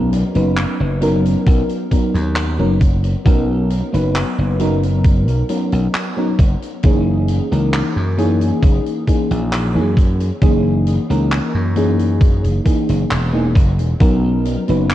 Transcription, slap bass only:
0.00 0.22 B1 medium
0.35 0.64 F#1 medium
0.80 1.34 F#1 medium
1.47 1.62 B1 medium
2.14 2.61 D#2 loud
2.59 3.14 F#1 loud
3.26 3.81 B1 medium
3.94 4.22 F#1 medium
4.38 5.28 F#1 medium
5.28 5.42 B1 loud
5.73 5.87 B1 medium
6.39 6.54 F#1 medium
6.84 7.39 F#1 loud
7.52 7.80 C#2 medium
7.96 8.51 F#2 medium
8.63 8.78 F#1 medium
9.31 9.77 A#1 loud
9.76 10.30 F#2 loud
10.42 10.97 F#1 medium
11.10 11.39 C#2 medium
11.54 12.46 F#2 medium
12.44 12.58 F#1 loud
12.89 13.03 F#1 medium
13.11 13.55 E1 medium
13.55 13.79 F#1 medium
13.79 13.93 E1 medium
14.00 14.55 B1 medium
14.69 14.95 F#1 medium

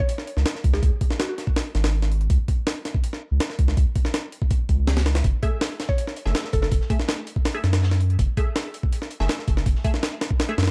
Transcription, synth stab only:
5.43 6.23 A3 medium
5.43 6.23 G#4 medium
5.43 6.23 E5 medium
6.25 6.88 A3 medium
6.25 6.88 G#4 medium
6.25 6.88 E5 medium
6.90 6.98 A3 medium
6.90 6.98 G#4 medium
6.90 6.98 E5 medium
7.54 7.59 A3 medium
7.54 7.59 G#4 medium
7.54 7.59 E5 loud
8.37 9.18 A3 medium
8.37 9.18 G#4 medium
8.37 9.18 E5 medium
9.20 9.82 A3 medium
9.20 9.82 G#4 medium
9.20 9.82 E5 medium
9.84 9.92 A3 medium
9.84 9.92 G#4 medium
9.84 9.92 E5 medium
10.49 10.54 A3 medium
10.49 10.54 G#4 medium
10.49 10.54 E5 loud

